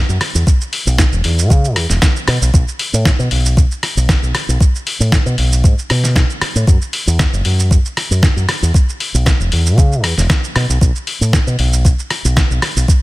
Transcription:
0.09 F#2, shaker
0.21 cross-stick, open hi-hat
0.35 E2, shaker
0.47 kick, shaker
0.61 shaker
0.73 open hi-hat
0.87 B1, shaker
0.98 kick, snare, shaker
1.12 E1, shaker
1.24 E2, open hi-hat
1.39 shaker
1.50 C#3, kick, shaker
1.64 shaker
1.76 E2, cross-stick, open hi-hat
1.90 E1, snare, shaker
2.02 kick, snare, shaker
2.16 shaker
2.28 B2, cross-stick, open hi-hat
2.42 B1, shaker
2.54 B1, kick, shaker
2.68 shaker
2.79 open hi-hat
2.93 A2, shaker
3.05 kick, snare, shaker
3.19 B2, shaker
3.31 B1, open hi-hat
3.46 shaker
3.57 kick, shaker
3.71 shaker
3.83 cross-stick, open hi-hat
3.97 B1, shaker
4.09 kick, snare, shaker
4.23 B1, shaker
4.35 cross-stick, open hi-hat
4.48 B1, shaker
4.61 kick, shaker
4.75 shaker
4.87 open hi-hat
5.00 A2, shaker
5.12 kick, snare, shaker
5.26 B2, shaker
5.38 B1, open hi-hat
5.52 shaker
5.64 G#2, kick, shaker
5.78 shaker
5.90 B2, cross-stick, open hi-hat
6.04 snare, shaker
6.16 kick, snare, shaker
6.30 shaker
6.41 muted fingered electric bass stroke, cross-stick, open hi-hat
6.55 A2, shaker
6.67 F#2, kick, shaker
6.82 shaker
6.93 open hi-hat
7.07 E2, shaker
7.19 kick, snare, shaker
7.33 F#1, shaker
7.45 F#2, open hi-hat
7.59 shaker
7.71 kick, shaker
7.85 shaker
7.97 cross-stick, open hi-hat
8.11 F#2, shaker
8.23 kick, snare, shaker
8.36 F#2, shaker
8.49 cross-stick, open hi-hat
8.62 E2, shaker
8.74 kick, shaker
8.89 shaker
9.00 open hi-hat
9.14 B1, shaker
9.26 kick, snare, shaker
9.40 E1, shaker
9.52 E2, open hi-hat
9.66 shaker
9.78 C#3, kick, shaker
9.92 shaker
10.04 E2, cross-stick, open hi-hat
10.18 E1, snare, shaker
10.30 kick, snare, shaker
10.44 shaker
10.56 B2, cross-stick, open hi-hat
10.69 B1, shaker
10.81 B1, kick, shaker
10.96 shaker
11.07 open hi-hat
11.21 A2, shaker
11.33 kick, snare, shaker
11.47 B2, shaker
11.59 B1, open hi-hat
11.73 shaker
11.85 kick, shaker
11.99 shaker
12.10 cross-stick, open hi-hat
12.25 B1, shaker
12.37 kick, snare, shaker
12.51 B1, shaker
12.62 cross-stick, open hi-hat
12.76 B1, shaker
12.88 kick, shaker

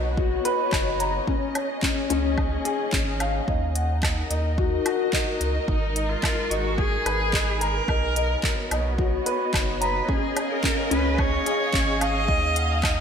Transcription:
Already playing: B1 B3 D#4 F#4 D#5
0.01 C#5
0.06 D#5
0.17 F#4, kick
0.45 B4, closed hi-hat
0.72 F#1 D#4, kick, clap, low woodblock
1.00 A#5, closed hi-hat
1.27 C#4, kick
1.55 C#5, closed hi-hat, low woodblock
1.60 G#4
1.83 C#4, kick, clap
2.10 C#2 C#4, closed hi-hat
2.38 D#4, kick, low woodblock
2.65 G#4, closed hi-hat
2.93 G#1 C#4, kick, clap
3.20 F5, closed hi-hat, low woodblock
3.47 D#2 D#4, kick
3.75 F#5, closed hi-hat
4.03 D#4, kick, clap, low woodblock
4.12 D#5
4.18 A#4
4.30 D#2 D#4, closed hi-hat
4.58 F#4, kick
4.86 F#4, closed hi-hat, low woodblock
5.13 D#5, kick, clap
5.40 C#2 D#4, closed hi-hat
5.68 G#1 G#3 D#4, kick
5.96 D#5, closed hi-hat
6.09 F4
6.23 D#4, kick, clap, low woodblock
6.50 G#1 D#4 F#4, closed hi-hat
6.67 G#4
6.77 G#4, kick
7.05 G#1 B4, closed hi-hat, low woodblock
7.33 D#4, kick, clap
7.60 A#4 A#5, closed hi-hat
7.88 B1 B3 D#4, kick, low woodblock
8.16 D#5, closed hi-hat
8.31 C#5
8.39 F#4
8.43 D#4, kick, clap
8.58 D#5
8.71 B1 D#4, closed hi-hat, low woodblock
8.98 F#4, kick
9.26 B4, closed hi-hat
9.53 F#1 D#4, kick, clap, low woodblock
9.81 B4 A#5, closed hi-hat
10.08 C#4 G#4, kick
10.17 G#4
10.36 C#5, closed hi-hat, low woodblock
10.44 F5
10.50 A#4
10.64 C#4, kick, clap
10.91 C#2 C#4 B4, closed hi-hat
11.18 D#4 C#5, kick, low woodblock
11.46 G#4, closed hi-hat
11.73 G#1 C#4, kick, clap
12.01 D#5 F5, closed hi-hat, low woodblock
12.28 D#2 D#4, kick
12.56 F#5, closed hi-hat
12.83 D#4, kick, clap, low woodblock

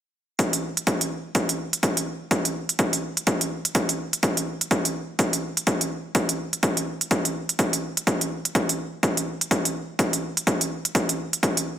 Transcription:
0.39 kick, closed hi-hat
0.53 closed hi-hat
0.77 closed hi-hat
0.87 kick, closed hi-hat
1.01 closed hi-hat
1.35 kick, closed hi-hat
1.49 closed hi-hat
1.73 closed hi-hat
1.83 kick, closed hi-hat
1.97 closed hi-hat
2.31 kick, closed hi-hat
2.45 closed hi-hat
2.69 closed hi-hat
2.79 kick, closed hi-hat
2.93 closed hi-hat
3.17 closed hi-hat
3.27 kick, closed hi-hat
3.41 closed hi-hat
3.65 closed hi-hat
3.75 kick, closed hi-hat
3.89 closed hi-hat
4.13 closed hi-hat
4.23 kick, closed hi-hat
4.37 closed hi-hat
4.61 closed hi-hat
4.71 kick, closed hi-hat
4.85 closed hi-hat
5.19 kick, closed hi-hat
5.33 closed hi-hat
5.57 closed hi-hat
5.67 kick, closed hi-hat
5.81 closed hi-hat
6.15 kick, closed hi-hat
6.29 closed hi-hat
6.53 closed hi-hat
6.63 kick, closed hi-hat
6.77 closed hi-hat
7.01 closed hi-hat
7.11 kick, closed hi-hat
7.25 closed hi-hat
7.49 closed hi-hat
7.59 kick, closed hi-hat
7.73 closed hi-hat
7.97 closed hi-hat
8.07 kick, closed hi-hat
8.21 closed hi-hat
8.45 closed hi-hat
8.55 kick, closed hi-hat
8.69 closed hi-hat
9.03 kick, closed hi-hat
9.17 closed hi-hat
9.41 closed hi-hat
9.51 kick, closed hi-hat
9.65 closed hi-hat
9.99 kick, closed hi-hat
10.13 closed hi-hat
10.37 closed hi-hat
10.47 kick, closed hi-hat
10.61 closed hi-hat
10.85 closed hi-hat
10.95 kick, closed hi-hat
11.09 closed hi-hat
11.33 closed hi-hat
11.43 kick, closed hi-hat
11.57 closed hi-hat

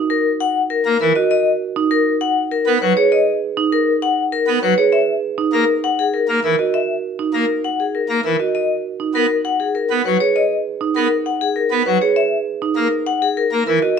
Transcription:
Already playing: D#4
0.10 A#4
0.40 F#5
0.70 A#4
0.86 A#3
1.01 E3 A#4
1.16 F#4 D#5
1.31 D#5
1.76 D#4
1.91 A#4
2.21 F#5
2.51 A#4
2.67 B3
2.82 F#3 B4
2.97 G#4 C#5
3.12 D#5
3.57 D#4
3.72 A#4
4.02 F#5
4.32 A#4
4.47 B3
4.62 F#3 B4
4.78 G#4 C#5
4.92 E5
5.38 D#4
5.53 A#3 A#4
5.84 F#5
5.99 G#4
6.14 A#4
6.29 A#3
6.44 E3 A#4
6.59 F#4 D#5
6.74 E5
7.19 D#4
7.34 A#3 A#4
7.64 F#5
7.80 G#4
7.95 A#4
8.09 A#3
8.24 E3 A#4
8.40 F#4 D#5
8.55 D#5
9.00 D#4
9.15 B3 A#4
9.45 F#5
9.60 G#4
9.75 A#4
9.90 B3
10.06 F#3 B4
10.20 G#4 C#5
10.36 D#5
10.81 D#4
10.96 B3 A#4
11.26 F#5
11.41 G#4
11.56 A#4
11.71 B3
11.86 F#3 B4
12.02 G#4 C#5
12.16 E5
12.62 D#4
12.76 A#3 A#4
13.06 F#5
13.22 G#4
13.37 A#4
13.52 A#3
13.67 E3 A#4
13.82 F#4 D#5

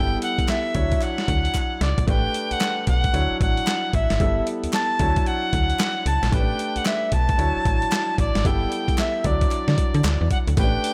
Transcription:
Already playing: G1 G3 B3 E4 A4 G5
0.22 F#5, closed hi-hat
0.38 D2, kick, closed hi-hat
0.48 E5, snare, clap, closed hi-hat
0.74 D2 F#3 D4 E4 C#5, kick, closed hi-hat
0.92 kick, closed hi-hat
1.01 F#5, clap, closed hi-hat
1.18 snare
1.28 D2, kick, closed hi-hat
1.45 closed hi-hat
1.54 kick, clap, closed hi-hat
1.81 C#2 D5, snare, closed hi-hat
1.98 A#1, kick, closed hi-hat
2.07 A1 A3 D4 G4 B4 G5, kick, closed hi-hat
2.34 closed hi-hat
2.51 B1 F#5, closed hi-hat
2.60 snare, clap, closed hi-hat
2.87 B1 F#5, kick, closed hi-hat
3.04 kick, closed hi-hat
3.13 D2 F#3 D4 E4 C#5, closed hi-hat
3.31 A1
3.41 A1 F#5, kick, closed hi-hat
3.57 closed hi-hat
3.67 snare, clap, closed hi-hat
3.93 A1 E5, kick, closed hi-hat
4.10 G#1, snare, closed hi-hat
4.20 G1 G3 B3 E4 A4, kick, closed hi-hat
4.47 closed hi-hat
4.64 D2, closed hi-hat
4.73 A5, snare, clap, closed hi-hat
4.99 D2 F#3 D4 E4 C#5, kick, closed hi-hat
5.16 kick, closed hi-hat
5.26 F#5, closed hi-hat
5.53 D2, kick, closed hi-hat
5.70 closed hi-hat
5.79 snare, clap, closed hi-hat
6.06 C#2 A5, closed hi-hat
6.23 A#1, snare, closed hi-hat
6.32 A1 A3 C#4 G4 B4 G5, kick, closed hi-hat
6.39 D4
6.59 closed hi-hat
6.76 B1 F#5, closed hi-hat
6.85 E5, snare, clap, closed hi-hat
7.12 B1 A5, kick, closed hi-hat
7.29 kick, closed hi-hat
7.38 D2 F#3 D4 E4 C#5, closed hi-hat
7.56 A1
7.65 A1, kick, closed hi-hat
7.82 closed hi-hat
7.92 snare, clap, closed hi-hat
8.18 A1 D5, kick, closed hi-hat
8.35 G#1, snare, closed hi-hat
8.45 G1 G3 B3 E4 A4 G5, kick, closed hi-hat
8.72 closed hi-hat
8.88 D2, kick, closed hi-hat
8.98 E5, snare, clap, closed hi-hat
9.24 D2 F#3 D4 E4 D5, kick, closed hi-hat
9.41 kick, closed hi-hat
9.51 clap, closed hi-hat
9.68 D3, snare
9.78 kick, closed hi-hat
9.94 D3, closed hi-hat
10.04 D2, snare, clap, closed hi-hat
10.21 E2
10.31 F#5, kick, closed hi-hat
10.47 D2, closed hi-hat
10.57 A1 A3 C#4 G4 B4 G5, kick, closed hi-hat, tambourine
10.64 D4
10.84 closed hi-hat, tambourine

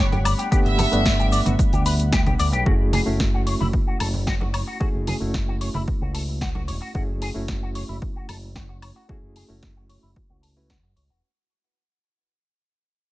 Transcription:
Already playing: G1 G3 A3 B3 D4 F#5 B5
0.12 G4, closed hi-hat, high conga, cabasa
0.25 D5, open hi-hat, cabasa, high woodblock, shaker
0.39 G4, closed hi-hat, cabasa, shaker
0.51 A3 B3 D4 G4 F#5, muted fingered electric bass stroke, kick, closed hi-hat, cabasa, shaker
0.65 G1 E5, closed hi-hat, cabasa
0.78 A4, open hi-hat, high conga, low conga, cabasa, shaker
0.92 G1 G3 A3 B3 D4 F#5, closed hi-hat, cabasa, shaker
1.06 kick, snare, closed hi-hat, cabasa, shaker
1.19 G4, closed hi-hat, cabasa, shaker
1.32 D5, open hi-hat, cabasa, shaker
1.46 G1 F#4, closed hi-hat, high conga, low conga, cabasa, shaker
1.59 kick, closed hi-hat, cabasa, shaker
1.73 D2 G4, closed hi-hat, cabasa, shaker
1.85 B4, open hi-hat, cabasa, shaker
2.00 closed hi-hat, cabasa, shaker
2.12 G4, kick, snare, closed hi-hat, cabasa, shaker
2.26 B1 G4, closed hi-hat, high conga, cabasa
2.39 D2 D5, open hi-hat, cabasa, shaker
2.53 B1 G4, closed hi-hat, cabasa, shaker
2.66 F#1 A3 C#4 E4 F#4 G#4, kick
2.93 G#4, open hi-hat, high conga, low conga
3.06 F#1 A3 C#4 E4 F#4
3.20 kick, snare
3.34 F#4
3.47 C#5, open hi-hat
3.60 F#1 E4, high conga, low conga
3.73 kick
3.87 F#4
4.00 F#1 A4, open hi-hat, high woodblock
4.14 low conga
4.27 F#4, kick, snare
4.41 F#4, high conga
4.54 C#5, open hi-hat, high woodblock
4.67 F#4
4.80 A3 C#4 E4 F#4 G#4, muted fingered electric bass stroke, kick
4.95 F#1
5.07 G#4, open hi-hat, high conga, low conga
5.20 F#1 A3 C#4 E4 F#4
5.34 kick, snare
5.48 F#4
5.61 C#5, open hi-hat
5.74 F#1 E4, high conga, low conga
5.88 kick
6.02 C#2 F#4
6.14 A4, open hi-hat
6.41 F#4, kick, snare
6.55 F#4, high conga
6.68 E1 C#5, open hi-hat
6.82 F#4
6.94 F#1 A3 C#4 E4 F#4 G#4, kick
7.22 G#4, open hi-hat
7.34 F#1 A3 C#4 E4 F#4
7.48 kick, snare
7.62 F#4
7.75 C#5, open hi-hat
7.89 F#1 E4
8.02 kick
8.16 F#4
8.29 F#1 A4, open hi-hat, high woodblock
8.55 F#4, kick, snare
8.69 F#4
8.82 C#5, open hi-hat, high woodblock
8.96 F#4
9.09 A3 C#4 E4 F#4 G#4, muted fingered electric bass stroke, kick
9.23 F#1
9.36 G#4, open hi-hat
9.49 F#1 A3 C#4 E4 F#4
9.63 kick, snare
9.76 F#4
9.89 C#5, open hi-hat
10.03 F#1 E4
10.16 kick
10.30 C#2 F#4
10.43 A4, open hi-hat
10.56 A3 C#4 E4 F#4 B4
10.69 F#4, kick, snare
10.83 F#2 F#4
10.96 C#2 C#5, open hi-hat
11.10 E1 F#4

